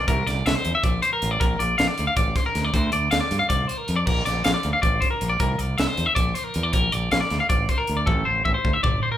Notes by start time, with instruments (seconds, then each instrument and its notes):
0.08 fingered electric bass C2, clean electric guitar A#4, kick, closed hi-hat
0.26 fingered electric bass C2, clean electric guitar D5, snare, closed hi-hat
0.46 fingered electric bass C2, clean electric guitar E5, snare, closed hi-hat
0.55 clean electric guitar C5
0.65 fingered electric bass E2, closed hi-hat
0.75 clean electric guitar E5
0.83 fingered electric bass A#1, clean electric guitar D5, kick, closed hi-hat
1.02 clean electric guitar C5, closed hi-hat
1.13 clean electric guitar A#4
1.22 fingered electric bass A1, closed hi-hat
1.31 clean electric guitar D5
1.40 fingered electric bass A#1, clean electric guitar A#4, kick, closed hi-hat
1.59 fingered electric bass A#1, clean electric guitar D5, closed hi-hat
1.78 fingered electric bass A#1, clean electric guitar F5, snare, closed hi-hat
1.88 clean electric guitar D5
1.98 fingered electric bass D2, closed hi-hat
2.07 clean electric guitar F5
2.17 fingered electric bass A1, clean electric guitar D5, kick, closed hi-hat
2.36 clean electric guitar C5, kick, snare, closed hi-hat
2.46 clean electric guitar A#4
2.55 fingered electric bass D2, snare, closed hi-hat
2.64 clean electric guitar D5
2.74 fingered electric bass D2, clean electric guitar C5, kick, closed hi-hat
2.92 fingered electric bass D2, clean electric guitar D5, closed hi-hat
3.11 fingered electric bass D2, clean electric guitar F5, snare, closed hi-hat
3.20 clean electric guitar D5
3.31 fingered electric bass G2, snare, closed hi-hat
3.39 clean electric guitar F5
3.49 fingered electric bass C2, clean electric guitar D5, kick, closed hi-hat
3.68 clean electric guitar C5, closed hi-hat
3.77 clean electric guitar A#4
3.88 fingered electric bass F2, closed hi-hat
3.96 clean electric guitar D5
4.06 fingered electric bass A#1, clean electric guitar A#4, kick, crash
4.25 fingered electric bass A#1, clean electric guitar D5, snare, closed hi-hat
4.44 fingered electric bass A#1, clean electric guitar F5, snare, closed hi-hat
4.54 clean electric guitar D5
4.63 fingered electric bass D2, closed hi-hat
4.73 clean electric guitar F5
4.82 fingered electric bass A1, clean electric guitar D5, kick, closed hi-hat
5.01 clean electric guitar C5, kick, closed hi-hat
5.11 clean electric guitar A#4
5.21 fingered electric bass A#1, closed hi-hat
5.29 clean electric guitar D5
5.40 fingered electric bass C2, clean electric guitar A#4, kick, closed hi-hat
5.58 fingered electric bass C2, clean electric guitar D5, closed hi-hat
5.78 fingered electric bass C2, clean electric guitar E5, snare, closed hi-hat
5.87 clean electric guitar C5
5.97 fingered electric bass E2, closed hi-hat
6.06 clean electric guitar E5
6.15 fingered electric bass A#1, clean electric guitar D5, kick, closed hi-hat
6.34 clean electric guitar C5, closed hi-hat
6.44 clean electric guitar A#4
6.54 fingered electric bass E2, closed hi-hat
6.63 clean electric guitar D5
6.72 fingered electric bass A#1, clean electric guitar A#4, kick, closed hi-hat
6.92 fingered electric bass A#1, clean electric guitar D5, closed hi-hat
7.11 fingered electric bass A#1, clean electric guitar F5, snare, closed hi-hat
7.21 clean electric guitar D5
7.30 fingered electric bass D2, snare, closed hi-hat
7.40 clean electric guitar F5
7.49 fingered electric bass A1, clean electric guitar D5, kick, closed hi-hat
7.69 clean electric guitar C5, kick, closed hi-hat
7.78 clean electric guitar A#4
7.87 fingered electric bass D2, closed hi-hat
7.97 clean electric guitar D5
8.06 fingered electric bass A1, clean electric guitar A4, kick, high tom
8.25 fingered electric bass A1, clean electric guitar C5
8.45 fingered electric bass A1, clean electric guitar E5, kick
8.54 clean electric guitar C5
8.65 fingered electric bass D2, kick
8.73 clean electric guitar E5
8.83 fingered electric bass G1, clean electric guitar D5, kick, mid tom
9.03 clean electric guitar C5
9.12 clean electric guitar A#4